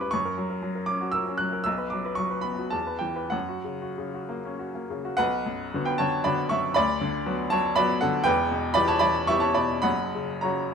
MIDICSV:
0, 0, Header, 1, 2, 480
1, 0, Start_track
1, 0, Key_signature, 2, "minor"
1, 0, Tempo, 508044
1, 132, Time_signature, 3, 2, 24, 8
1, 1573, Tempo, 533333
1, 2533, Tempo, 615385
1, 4453, Tempo, 532860
1, 5413, Tempo, 506757
1, 8293, Tempo, 573066
1, 9500, End_track
2, 0, Start_track
2, 0, Title_t, "Upright piano"
2, 0, Program_c, 0, 0
2, 0, Control_c, 0, 64, 127
2, 0, Note_on_c, 0, 40, 65
2, 0, Note_on_c, 0, 55, 47
2, 0, Note_on_c, 0, 61, 43
2, 0, Note_on_c, 0, 67, 53
2, 0, Note_on_c, 0, 71, 54
2, 0, Note_on_c, 0, 79, 93
2, 0, Note_on_c, 0, 83, 86
2, 0, Note_on_c, 0, 85, 87
2, 0, Note_on_c, 0, 86, 84
2, 9, Note_off_c, 0, 71, 0
2, 9, Note_on_c, 0, 71, 56
2, 102, Note_off_c, 0, 85, 0
2, 102, Note_on_c, 0, 85, 100
2, 115, Note_off_c, 0, 86, 0
2, 126, Note_on_c, 0, 42, 64
2, 130, Note_off_c, 0, 71, 0
2, 146, Control_c, 0, 64, 0
2, 150, Note_off_c, 0, 83, 0
2, 151, Note_off_c, 0, 55, 0
2, 154, Note_off_c, 0, 67, 0
2, 155, Note_off_c, 0, 61, 0
2, 156, Note_off_c, 0, 40, 0
2, 156, Note_off_c, 0, 79, 0
2, 240, Note_on_c, 0, 70, 53
2, 279, Control_c, 0, 64, 127
2, 354, Note_on_c, 0, 54, 46
2, 437, Note_off_c, 0, 70, 0
2, 472, Note_on_c, 0, 70, 51
2, 554, Note_off_c, 0, 54, 0
2, 590, Note_on_c, 0, 54, 54
2, 673, Note_off_c, 0, 70, 0
2, 712, Note_on_c, 0, 70, 44
2, 792, Note_off_c, 0, 54, 0
2, 814, Note_on_c, 0, 86, 90
2, 836, Note_off_c, 0, 85, 0
2, 837, Note_on_c, 0, 61, 53
2, 914, Note_off_c, 0, 70, 0
2, 956, Note_on_c, 0, 66, 49
2, 1036, Note_off_c, 0, 61, 0
2, 1054, Note_on_c, 0, 88, 92
2, 1072, Note_off_c, 0, 86, 0
2, 1080, Note_on_c, 0, 70, 51
2, 1155, Note_off_c, 0, 66, 0
2, 1201, Note_on_c, 0, 61, 44
2, 1277, Note_off_c, 0, 70, 0
2, 1300, Note_on_c, 0, 90, 90
2, 1312, Note_off_c, 0, 88, 0
2, 1325, Note_on_c, 0, 54, 44
2, 1398, Note_off_c, 0, 61, 0
2, 1445, Note_on_c, 0, 70, 51
2, 1522, Note_off_c, 0, 54, 0
2, 1533, Note_off_c, 0, 42, 0
2, 1547, Note_on_c, 0, 88, 97
2, 1558, Note_off_c, 0, 90, 0
2, 1570, Note_off_c, 0, 70, 0
2, 1571, Note_on_c, 0, 35, 67
2, 1590, Control_c, 0, 64, 0
2, 1676, Note_on_c, 0, 71, 53
2, 1718, Control_c, 0, 64, 127
2, 1785, Note_on_c, 0, 86, 68
2, 1795, Note_off_c, 0, 88, 0
2, 1811, Note_on_c, 0, 54, 44
2, 1871, Note_off_c, 0, 71, 0
2, 1922, Note_on_c, 0, 71, 48
2, 1998, Note_off_c, 0, 54, 0
2, 2012, Note_on_c, 0, 85, 87
2, 2032, Note_off_c, 0, 86, 0
2, 2038, Note_on_c, 0, 54, 46
2, 2113, Note_off_c, 0, 71, 0
2, 2148, Note_on_c, 0, 71, 42
2, 2232, Note_off_c, 0, 54, 0
2, 2247, Note_on_c, 0, 83, 79
2, 2266, Note_on_c, 0, 59, 48
2, 2268, Note_off_c, 0, 85, 0
2, 2350, Note_off_c, 0, 71, 0
2, 2399, Note_on_c, 0, 66, 46
2, 2474, Note_off_c, 0, 59, 0
2, 2503, Note_off_c, 0, 35, 0
2, 2509, Note_on_c, 0, 81, 77
2, 2515, Note_off_c, 0, 83, 0
2, 2524, Note_on_c, 0, 40, 55
2, 2530, Note_off_c, 0, 66, 0
2, 2551, Control_c, 0, 64, 0
2, 2638, Note_on_c, 0, 71, 44
2, 2678, Control_c, 0, 64, 127
2, 2732, Note_on_c, 0, 79, 70
2, 2748, Note_off_c, 0, 81, 0
2, 2750, Note_on_c, 0, 52, 43
2, 2825, Note_off_c, 0, 71, 0
2, 2866, Note_on_c, 0, 71, 49
2, 2944, Note_off_c, 0, 52, 0
2, 2976, Note_on_c, 0, 78, 78
2, 2980, Note_off_c, 0, 40, 0
2, 2985, Note_off_c, 0, 79, 0
2, 2992, Note_on_c, 0, 42, 59
2, 2993, Note_off_c, 0, 71, 0
2, 3018, Control_c, 0, 64, 0
2, 3122, Note_on_c, 0, 66, 47
2, 3190, Control_c, 0, 64, 127
2, 3244, Note_on_c, 0, 49, 40
2, 3327, Note_off_c, 0, 66, 0
2, 3380, Note_on_c, 0, 66, 43
2, 3451, Note_off_c, 0, 49, 0
2, 3505, Note_on_c, 0, 49, 48
2, 3580, Note_off_c, 0, 66, 0
2, 3632, Note_on_c, 0, 66, 42
2, 3703, Note_off_c, 0, 49, 0
2, 3748, Note_on_c, 0, 58, 49
2, 3825, Note_off_c, 0, 66, 0
2, 3875, Note_on_c, 0, 61, 44
2, 3941, Note_off_c, 0, 58, 0
2, 3985, Note_on_c, 0, 66, 46
2, 4063, Note_off_c, 0, 61, 0
2, 4105, Note_on_c, 0, 58, 43
2, 4178, Note_off_c, 0, 66, 0
2, 4218, Note_off_c, 0, 78, 0
2, 4225, Note_on_c, 0, 49, 45
2, 4297, Note_off_c, 0, 58, 0
2, 4341, Note_on_c, 0, 66, 50
2, 4409, Note_off_c, 0, 49, 0
2, 4419, Note_off_c, 0, 42, 0
2, 4433, Note_on_c, 0, 78, 105
2, 4441, Note_on_c, 0, 71, 72
2, 4451, Note_off_c, 0, 66, 0
2, 4451, Note_on_c, 0, 35, 72
2, 4472, Control_c, 0, 64, 0
2, 4603, Control_c, 0, 64, 127
2, 4694, Note_on_c, 0, 42, 47
2, 4947, Note_on_c, 0, 50, 53
2, 4956, Note_on_c, 0, 66, 57
2, 4957, Note_on_c, 0, 59, 56
2, 5017, Note_off_c, 0, 71, 0
2, 5049, Note_off_c, 0, 78, 0
2, 5049, Note_on_c, 0, 79, 81
2, 5058, Note_on_c, 0, 71, 62
2, 5083, Note_off_c, 0, 42, 0
2, 5159, Note_off_c, 0, 50, 0
2, 5162, Note_on_c, 0, 81, 94
2, 5164, Note_off_c, 0, 66, 0
2, 5165, Note_off_c, 0, 59, 0
2, 5169, Note_off_c, 0, 71, 0
2, 5172, Note_on_c, 0, 73, 70
2, 5173, Note_off_c, 0, 79, 0
2, 5183, Note_on_c, 0, 50, 52
2, 5393, Note_off_c, 0, 73, 0
2, 5396, Note_on_c, 0, 83, 92
2, 5397, Note_off_c, 0, 50, 0
2, 5400, Note_on_c, 0, 74, 65
2, 5405, Note_off_c, 0, 81, 0
2, 5411, Note_on_c, 0, 50, 58
2, 5418, Note_on_c, 0, 59, 49
2, 5424, Note_on_c, 0, 66, 62
2, 5631, Note_off_c, 0, 50, 0
2, 5632, Note_off_c, 0, 74, 0
2, 5635, Note_off_c, 0, 59, 0
2, 5635, Note_on_c, 0, 85, 94
2, 5638, Note_off_c, 0, 66, 0
2, 5648, Note_off_c, 0, 83, 0
2, 5650, Note_on_c, 0, 76, 76
2, 5656, Note_on_c, 0, 42, 52
2, 5859, Note_off_c, 0, 35, 0
2, 5872, Note_on_c, 0, 83, 113
2, 5877, Note_off_c, 0, 76, 0
2, 5886, Note_on_c, 0, 74, 95
2, 5887, Note_off_c, 0, 85, 0
2, 5897, Note_on_c, 0, 38, 83
2, 5898, Note_off_c, 0, 42, 0
2, 5912, Control_c, 0, 64, 0
2, 6063, Control_c, 0, 64, 127
2, 6128, Note_on_c, 0, 50, 58
2, 6363, Note_on_c, 0, 54, 54
2, 6364, Note_on_c, 0, 66, 61
2, 6365, Note_on_c, 0, 59, 55
2, 6521, Note_off_c, 0, 50, 0
2, 6579, Note_off_c, 0, 74, 0
2, 6590, Note_off_c, 0, 54, 0
2, 6590, Note_off_c, 0, 66, 0
2, 6590, Note_on_c, 0, 81, 103
2, 6591, Note_off_c, 0, 59, 0
2, 6608, Note_on_c, 0, 73, 78
2, 6610, Note_off_c, 0, 83, 0
2, 6612, Note_on_c, 0, 54, 60
2, 6831, Note_on_c, 0, 83, 124
2, 6838, Note_off_c, 0, 73, 0
2, 6838, Note_on_c, 0, 74, 85
2, 6843, Note_off_c, 0, 54, 0
2, 6847, Note_off_c, 0, 81, 0
2, 6857, Note_on_c, 0, 54, 63
2, 6857, Note_on_c, 0, 59, 64
2, 6859, Note_on_c, 0, 66, 68
2, 7069, Note_off_c, 0, 74, 0
2, 7070, Note_on_c, 0, 78, 94
2, 7071, Note_off_c, 0, 59, 0
2, 7072, Note_off_c, 0, 54, 0
2, 7072, Note_off_c, 0, 66, 0
2, 7080, Note_on_c, 0, 69, 69
2, 7082, Note_off_c, 0, 83, 0
2, 7088, Note_on_c, 0, 50, 60
2, 7286, Note_on_c, 0, 79, 124
2, 7292, Note_off_c, 0, 38, 0
2, 7299, Note_on_c, 0, 28, 75
2, 7300, Note_on_c, 0, 71, 93
2, 7305, Note_off_c, 0, 69, 0
2, 7308, Note_on_c, 0, 40, 83
2, 7316, Note_off_c, 0, 78, 0
2, 7326, Note_off_c, 0, 50, 0
2, 7344, Control_c, 0, 64, 0
2, 7496, Control_c, 0, 64, 127
2, 7549, Note_on_c, 0, 47, 58
2, 7746, Note_off_c, 0, 71, 0
2, 7761, Note_on_c, 0, 83, 127
2, 7772, Note_on_c, 0, 74, 95
2, 7773, Note_off_c, 0, 79, 0
2, 7786, Note_on_c, 0, 59, 60
2, 7788, Note_on_c, 0, 52, 65
2, 7791, Note_on_c, 0, 67, 62
2, 7893, Note_on_c, 0, 81, 96
2, 7894, Note_off_c, 0, 74, 0
2, 7897, Note_off_c, 0, 83, 0
2, 7899, Note_on_c, 0, 73, 73
2, 7932, Note_off_c, 0, 47, 0
2, 8003, Note_on_c, 0, 83, 120
2, 8008, Note_off_c, 0, 59, 0
2, 8009, Note_off_c, 0, 52, 0
2, 8010, Note_off_c, 0, 67, 0
2, 8016, Note_on_c, 0, 74, 86
2, 8020, Note_off_c, 0, 73, 0
2, 8025, Note_on_c, 0, 52, 58
2, 8027, Note_off_c, 0, 81, 0
2, 8264, Note_off_c, 0, 74, 0
2, 8268, Note_on_c, 0, 85, 115
2, 8273, Note_off_c, 0, 52, 0
2, 8276, Note_off_c, 0, 83, 0
2, 8276, Note_on_c, 0, 76, 95
2, 8288, Note_on_c, 0, 52, 56
2, 8293, Note_on_c, 0, 67, 64
2, 8295, Note_on_c, 0, 59, 60
2, 8378, Note_on_c, 0, 81, 88
2, 8388, Note_on_c, 0, 73, 70
2, 8393, Note_off_c, 0, 76, 0
2, 8398, Note_off_c, 0, 85, 0
2, 8498, Note_on_c, 0, 83, 93
2, 8499, Note_off_c, 0, 52, 0
2, 8499, Note_on_c, 0, 74, 70
2, 8501, Note_off_c, 0, 67, 0
2, 8502, Note_off_c, 0, 59, 0
2, 8505, Note_off_c, 0, 73, 0
2, 8509, Note_off_c, 0, 81, 0
2, 8518, Note_on_c, 0, 47, 53
2, 8712, Note_off_c, 0, 28, 0
2, 8713, Note_off_c, 0, 83, 0
2, 8716, Note_off_c, 0, 40, 0
2, 8726, Note_on_c, 0, 83, 105
2, 8730, Note_off_c, 0, 74, 0
2, 8737, Note_on_c, 0, 30, 68
2, 8737, Note_on_c, 0, 78, 83
2, 8745, Note_on_c, 0, 42, 72
2, 8757, Note_off_c, 0, 47, 0
2, 8779, Control_c, 0, 64, 0
2, 8928, Control_c, 0, 64, 127
2, 9004, Note_on_c, 0, 49, 47
2, 9206, Note_off_c, 0, 78, 0
2, 9225, Note_on_c, 0, 82, 74
2, 9233, Note_off_c, 0, 49, 0
2, 9234, Note_off_c, 0, 83, 0
2, 9238, Note_on_c, 0, 73, 55
2, 9246, Note_on_c, 0, 49, 48
2, 9248, Note_on_c, 0, 54, 47
2, 9255, Note_on_c, 0, 66, 53
2, 9466, Note_off_c, 0, 49, 0
2, 9467, Note_off_c, 0, 54, 0
2, 9471, Note_off_c, 0, 66, 0
2, 9500, Note_off_c, 0, 30, 0
2, 9500, Note_off_c, 0, 42, 0
2, 9500, Note_off_c, 0, 73, 0
2, 9500, Note_off_c, 0, 82, 0
2, 9500, End_track
0, 0, End_of_file